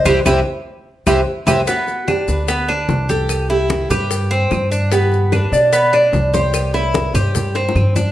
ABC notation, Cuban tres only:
X:1
M:4/4
L:1/8
Q:1/4=148
K:G
V:1 name="Cuban tres"
[CEG] [CEG] z3 [CEG] z [CEG] | B,2 D2 B, D2 G- | G E2 G2 C2 D | B,2 D2 B, D2 G- |
G E2 G2 C2 D |]